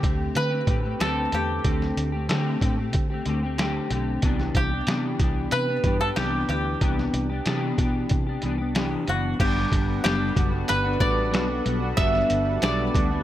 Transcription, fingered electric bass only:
0.03 D2
0.36 D3
0.67 A2
1.01 D2
1.32 E2
1.65 D2
1.97 D2
2.29 D3
2.62 A2
2.95 D3
3.26 D2
3.91 B1
4.23 C2
4.55 C2
4.87 C3
5.20 C2
5.52 C3
5.84 G2
6.17 C2
6.49 D2
6.81 C2
7.13 C2
7.46 C3
7.78 B2
8.11 C3
8.43 C2
9.08 F#1
9.40 G1
9.72 G1
10.05 F#1
10.36 F#1
10.70 G1
11.00 A1
11.34 B1
11.66 B1
11.98 G1
12.30 G1
12.63 B1
12.95 D2

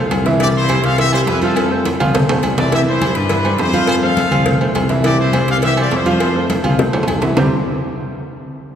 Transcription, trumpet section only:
0.40 G4 D5
0.55 E4 C5
0.83 A4 F5
0.98 G4 E5
1.13 E4 C5
1.27 E4 B4
1.41 C4 A4
2.58 F4 D5
2.73 G4 E5
2.87 E4 C5
3.15 D4 B4
3.58 E4 C5
3.87 F4 C5
4.02 A4 F5
5.05 G4 D5
5.19 E4 C5
5.50 A4 F5
5.64 G4 E5
5.78 F4 D5
5.93 E4 C5
6.08 F4 C5

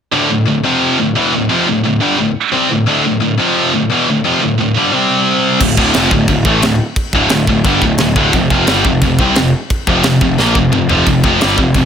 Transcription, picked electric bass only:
5.60 D1
5.78 D1
5.95 F1
6.12 D1
6.28 D1
6.45 A1
6.63 D1
7.13 D1
7.30 D1
7.48 D1
7.65 G1
7.82 D1
7.99 D1
8.16 D1
8.33 F1
8.51 F1
8.68 G1
8.85 F1
9.02 F1
9.19 C2
9.38 F1
9.87 F1
10.05 F1
10.21 F1
10.39 A#1
10.56 F1
10.72 F1
10.90 F1
11.07 F1
11.24 F1
11.42 G1
11.58 F1
11.75 F1

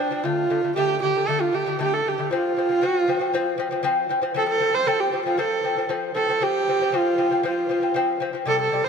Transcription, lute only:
0.10 F3 C4
0.24 D3 A3
0.50 D3 A3
0.63 D3 A3
0.76 D3 A3
1.02 D3 A3
1.16 D3 A3
1.28 D3 A3
1.53 D3 A3
1.66 D3 A3
1.79 D3 A3
2.07 D3 A3
2.18 D3 A3
2.31 F3 C4
2.57 F3 C4
2.69 F3 C4
2.82 F3 C4
3.08 F3 C4
3.19 F3 C4
3.33 F3 C4
3.58 F3 C4
3.71 F3 C4
3.83 F3 C4
4.09 F3 C4
4.22 F3 C4
4.34 F3 C4
4.60 F3 C4
4.73 F3 C4
4.86 F3 C4
5.12 F3 C4
5.26 F3 C4
5.38 F3 C4
5.63 F3 C4
5.77 F3 C4
5.89 F3 C4
6.15 F3 C4
6.28 F3 C4
6.40 F3 C4
6.68 F3 C4
6.81 F3 C4
6.92 F3 C4
7.18 F3 C4
7.31 F3 C4
7.43 F3 C4
7.69 F3 C4
7.82 F3 C4
7.94 F3 C4
8.20 F3 C4
8.33 F3 C4
8.46 C3 G3
8.72 C3 G3
8.84 C3 G3

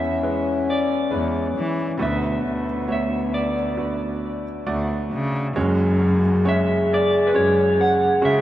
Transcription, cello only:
Already playing: E2
1.12 E2
1.57 E3
2.02 D2
2.46 D2
4.68 D2
5.13 C#3
5.57 F#2
7.34 F#2
8.22 C#3

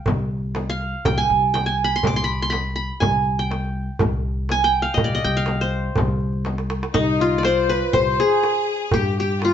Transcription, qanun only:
Already playing: F5 G5
0.70 F5
1.06 G5
1.18 G#5
1.54 G5
1.66 G#5
1.84 B5
1.96 C6
2.07 D6
2.16 C6
2.24 B5
2.42 C6
2.50 B5
2.76 B5
3.00 G#5
3.39 G5
4.51 G#5
4.64 G5
4.82 F5
4.94 D#5
5.04 D5
5.15 D#5
5.24 G5
5.37 F5
5.61 C5
6.94 D#4
7.21 F4
7.38 D5
7.45 C5
7.69 B4
7.93 C5
8.20 G#4
8.94 G4
9.20 G4
9.45 F4

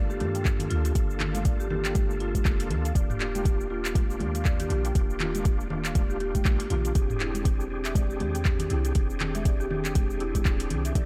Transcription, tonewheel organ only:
Already playing: A#3 D4 F4 A4
0.95 A#3 D4 F4 A4
1.70 A#3 D4 F4 A4
2.95 A#3 D4 F4 G4
3.70 A#3 D4 F4 G4
4.95 A#3 D4 F4 G4
5.70 A#3 D4 F4 G4
6.20 A#3 D4 F4 G4
6.45 A#3 D4 F4 G4
6.70 A#3 D4 F4 G4
6.95 C4 D4 G4 G#4
7.70 C4 D4 G4 G#4
8.95 C4 D4 G4 G#4
9.70 C4 D4 G4 G#4
10.95 C4 D#4 G4 A4

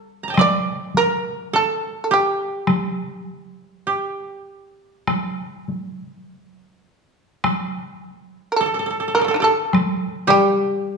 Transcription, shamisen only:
0.41 D5
0.97 A#4
1.56 A4
2.04 A4
2.14 G4
8.52 A#4
8.56 A4
9.15 A#4
9.19 D#3 G3
9.25 A3
9.31 A#3 D4
9.36 D#4
9.40 G4 A4
10.30 G4

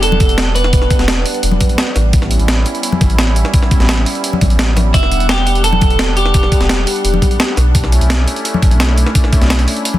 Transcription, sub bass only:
Already playing: E1
0.99 E1
1.43 E1
1.96 A1
2.40 A1
3.01 G1
3.10 A1
3.80 A1
4.41 A1
4.94 E1
6.61 E1
7.04 E1
7.57 B1
8.01 B1
8.63 A1
8.71 B1
9.41 B1

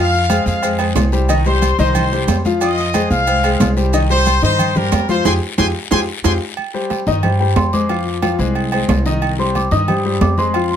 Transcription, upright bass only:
Already playing: F2
0.46 F2
0.95 C2
1.78 C2
2.27 F2
3.10 C2
3.60 C2
4.42 G2
4.92 F2
5.25 F2
5.58 F2
5.91 F2
6.24 F2
7.06 G2
7.56 F2
8.39 C2
8.88 C2
9.71 G2
10.21 F2

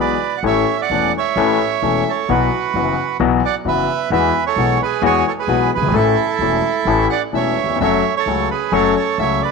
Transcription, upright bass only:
Already playing: B1
0.43 A1
0.90 E1
1.36 A1
1.82 E1
2.29 B1
2.74 F#1
3.20 B1
3.65 F#1
4.10 E2
4.56 B1
5.02 E2
5.47 B1
5.76 F#1
5.82 G1
5.87 G#1
5.92 A1
6.39 E1
6.85 A1
7.33 E1
7.80 F#1
8.26 C#2
8.72 F#1
9.18 C#2

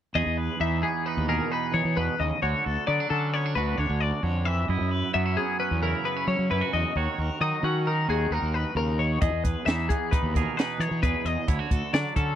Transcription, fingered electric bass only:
0.15 E2
0.26 E2
0.60 E2
1.17 D#2
1.74 E3
1.85 E3
1.97 E2
2.20 D#2
2.42 D2
2.66 D2
2.88 D3
3.10 D3
3.56 D2
3.78 D2
3.89 D2
4.23 F2
4.69 F#2
4.81 F#2
5.15 F#2
5.71 E2
6.27 F#3
6.39 F#3
6.51 F#2
6.73 E2
6.95 D#2
7.18 D#2
7.41 D#3
7.63 D#3
8.08 D#2
8.31 D#2
8.42 D#2
8.75 D#2
9.22 E2
9.32 E2
9.66 E2
10.23 D#2
10.79 E3
10.91 E3
11.03 E2
11.24 E2
11.48 D2
11.71 D2
11.93 D3
12.16 D3

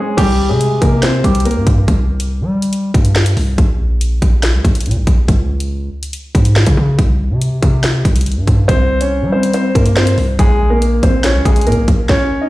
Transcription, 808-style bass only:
0.18 C2
0.50 C3
0.82 C3
1.24 C2
1.56 G2
1.67 G2
1.88 C2
2.41 G3
2.94 G2
3.37 C2
3.58 A#1
4.22 A#1
4.54 C#2
4.65 A#1
4.86 A#2
4.97 A#1
5.07 A#1
5.28 C#2
6.35 G#2
6.67 C#3
6.77 C#3
6.99 C2
7.31 C3
7.62 C3
8.05 C2
8.37 G2
8.47 G2
8.69 C2
9.22 G3
9.75 G2
10.18 C2
10.39 A#1
11.03 A#1
11.35 C#2
11.45 A#1
11.67 A#2
11.77 A#1
11.88 A#1

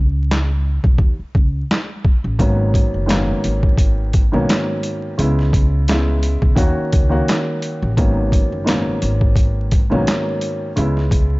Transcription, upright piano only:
2.39 G#2 D#3 F#3 A#3 B3 C#4
3.06 G#2 D#3 F#3 A#3 B3 C#4
4.32 G#2 D#3 F#3 A#3 B3 C#4
5.18 C#3 G#3 B3 E4
5.88 C#3 G#3 B3 E4
6.55 D#3 A#3 C#4 F#4
7.09 D#3 A#3 C#4 F#4
7.97 G#2 D#3 F#3 A#3 B3 C#4
8.65 G#2 D#3 F#3 A#3 B3 C#4
9.90 G#2 D#3 F#3 A#3 B3 C#4
10.76 C#3 G#3 B3 E4

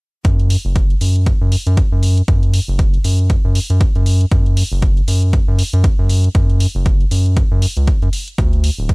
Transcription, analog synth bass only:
0.25 F#2
0.65 F#1
1.01 F#2
1.41 F#2
1.67 F#2
1.92 F#2
2.28 F#2
2.68 F#1
3.04 F#2
3.45 F#2
3.70 F#2
3.95 F#2
4.32 F#2
4.72 F#1
5.08 F#2
5.48 F#2
5.73 F#2
5.99 F#2
6.35 F#2
6.75 F#1
7.11 F#2
7.51 F#2
7.77 C#2
8.02 F#2
8.38 D2
8.78 D1

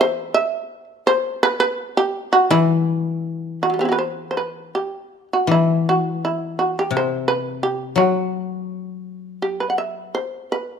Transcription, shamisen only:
0.01 C5
0.34 E5
1.07 C5
1.43 B4
1.60 B4
1.97 G4
2.33 F#4
2.51 E4
3.63 F#4
3.70 F#3
3.74 G3
3.79 B3 C4 G4
3.85 E4 F#4
3.92 B4
3.99 C5
4.31 C5
4.37 B4
4.75 G4
5.33 F#4
5.51 E4
5.89 F#4
6.25 E4
6.59 F#4
6.79 G4
6.97 C5
7.28 B4
7.63 G4
7.98 F#4
9.42 G4
9.60 B4
9.70 F#5
9.78 E5
10.15 C5
10.52 B4

